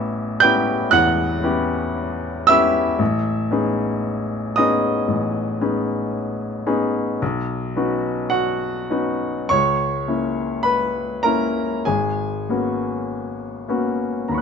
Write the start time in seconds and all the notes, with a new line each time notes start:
Already playing: A1 B3 C#4 E4 G4 E5 E6
0.40 B3 C#4 E4 G4 G5 G6
0.91 E2 F#5 F#6
1.43 B3 C#4 E4 G4
2.47 B3 C#4 E4 G4 E5 E6
2.99 A1
3.51 B3 C#4 D#4 G#4
4.56 B3 C#4 D#4 G#4 D#5 D#6
5.08 A1
5.61 B3 C#4 D#4 G#4
6.66 B3 C#4 D#4 G#4
7.22 B1
7.76 B3 C#4 D#4 F#4
8.30 F#4 F#5
8.90 B3 C#4 D#4 F#4
9.49 C#2 C#5 C#6
10.08 A#3 C#4 E4
10.63 B4 B5
11.23 A#3 C#4 E4 A#4 A#5
11.85 G#1 G#4 G#5
12.49 A#3 B3 C#4 F#4
13.68 A#3 B3 C#4 F#4
14.28 D#2 A#5 B5
14.34 C#6 F#6